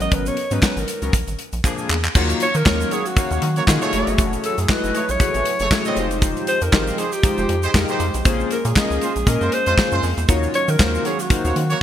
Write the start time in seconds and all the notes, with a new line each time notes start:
Already playing: F#3 B3 C#4 A#4
0.00 A1 D#5, closed hi-hat, shaker
0.11 G#1 B4, kick, closed hi-hat, shaker
0.26 C#5, closed hi-hat, shaker
0.37 closed hi-hat
0.51 G#2 F#3 B3 C#4 D#4 B4, closed hi-hat, shaker
0.62 kick, snare, clap, shaker
0.76 G#1 A#4, closed hi-hat, shaker
0.88 closed hi-hat, shaker
1.02 C#2 F#3 B3 C#4 A#4, closed hi-hat, shaker
1.13 A#1, kick, closed hi-hat, shaker
1.27 G#1, closed hi-hat, shaker
1.39 closed hi-hat
1.52 A#1, closed hi-hat, shaker
1.64 F3 A#3 D4 G#4, kick, clap, shaker
1.78 shaker
1.89 E2, clap, shaker
2.04 clap, shaker
2.15 D#2 D#3 F#3 A#3 C#4 D#4 F4 F#4 C#5 F5, kick, crash, shaker
2.30 closed hi-hat, shaker
2.40 C#5, closed hi-hat, shaker
2.55 D#3 A#4, closed hi-hat, shaker
2.66 D#2 A#3 D#4 F4 F#4 C#5, kick, snare, clap, shaker
2.80 closed hi-hat, shaker
2.91 A#3 F#4 G#4 C#5, closed hi-hat, shaker
3.06 F#4, closed hi-hat, shaker
3.17 A#3 D#4 F#4 C#5 F5, kick, closed hi-hat, shaker
3.31 D#2 A#3 F#4 C#5, closed hi-hat, shaker
3.42 D#3, closed hi-hat
3.56 A#3 F#4 C#5, closed hi-hat, shaker
3.67 D#3 A#3 D#4 F4 F#4 G#4, kick, snare, clap, shaker
3.82 A3 G#4 C#5, closed hi-hat, shaker
3.93 F#1 F#3 A3 E4 F#4 G#4 C#5, closed hi-hat, shaker
4.07 G1, closed hi-hat, shaker
4.18 F#1, kick, closed hi-hat, shaker
4.33 closed hi-hat, shaker
4.44 A4, closed hi-hat, shaker
4.58 F#2 G#4, closed hi-hat, shaker
4.69 A3 E4 F#4 G#4 B4 D#5, kick, snare, clap, shaker
4.83 F#1, closed hi-hat, shaker
4.95 A3 G#4 C#5, closed hi-hat, shaker
5.09 A#1 C#5, closed hi-hat, shaker
5.20 A3 E4 F#4 G#4 B4, kick, closed hi-hat, shaker
5.34 G#1 A3 G#4 C#5, closed hi-hat, shaker
5.45 closed hi-hat
5.59 F#1 A3 G#4 C#5, closed hi-hat, shaker
5.71 A3 E4 F#4 G#4 C#5, kick, snare, clap, shaker
5.85 C4 G#4 D#5, shaker
5.96 F1 F3 G#3 D#4 F4 G4 C5, closed hi-hat, shaker
6.11 closed hi-hat, shaker
6.22 kick, closed hi-hat, shaker
6.36 closed hi-hat, shaker
6.47 C5, closed hi-hat, shaker
6.61 F2 A#4, closed hi-hat, shaker
6.72 G#1 G#3 D#4 F4 G4 C5, kick, snare, clap, shaker
6.87 closed hi-hat, shaker
6.98 G#3 G4 G#4 C5, closed hi-hat, shaker
7.12 G4, closed hi-hat, shaker
7.23 G#3 D#4 F4 G4 C5, kick, closed hi-hat, shaker
7.38 F1 G#3 G4 C5, closed hi-hat, shaker
7.49 F2, closed hi-hat
7.63 G#3 G4 C5, closed hi-hat, shaker
7.74 F2 G#3 D#4 F4 G4 A#4, kick, snare, clap, shaker
7.88 G#3 G4 C5, closed hi-hat, shaker
8.00 F2, closed hi-hat, shaker
8.14 B1, closed hi-hat, shaker
8.25 A#1 G#3 A#3 C#4 F4 G#4 C5, kick, closed hi-hat, shaker
8.40 shaker
8.51 A#4, closed hi-hat, shaker
8.65 A#2 G#4, closed hi-hat, shaker
8.76 A#3 C#4 F4 G#4 D#5, kick, snare, clap, shaker
8.90 C#2, closed hi-hat, shaker
9.01 G#3 F4 C5, closed hi-hat, shaker
9.16 A#1, closed hi-hat, shaker
9.27 A#2 A#3 C#4 F4 G#4 A#4 D#5, kick, closed hi-hat, shaker
9.41 F#2 G#3 F4 C5, closed hi-hat, shaker
9.52 C5, closed hi-hat
9.66 F2 G#3 F4 C5, closed hi-hat, shaker
9.77 A#3 C#4 F4 G#4 C5, kick, snare, clap, shaker
9.92 F#2 G#3 F4 C5, shaker
10.03 F2, open hi-hat, shaker
10.17 E2, closed hi-hat, shaker
10.28 D#2 D#3 F#3 A#3 C#4 D#4 F4 F#4 C#5 F5, kick, closed hi-hat, shaker
10.43 shaker
10.54 C#5, closed hi-hat, shaker
10.68 D#3 A#4, closed hi-hat, shaker
10.79 D#2 A#3 D#4 F4 F#4 C5, kick, snare, clap, shaker
10.95 shaker
11.05 A#3 F#4 G#4 C#5, closed hi-hat, shaker
11.19 F#4, closed hi-hat, shaker
11.30 A#3 D#4 F#4 C5 F5, kick, closed hi-hat, shaker
11.45 D#2 A#3 F#4 C#5, closed hi-hat, shaker
11.56 D#3, closed hi-hat
11.70 A#3 F#4 C#5, closed hi-hat, shaker